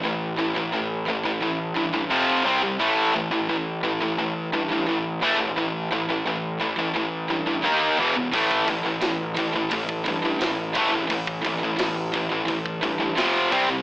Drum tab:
HH |----------------|----------------|----------------|o-o-o-o-o-o-o-o-|
SD |----------------|----------------|----------------|----o-------o---|
BD |----------------|----------------|----------------|ooo---o-ooo---o-|

HH |o-o-o-o-o-o-o-o-|
SD |----o-------o---|
BD |ooo---o-ooo---o-|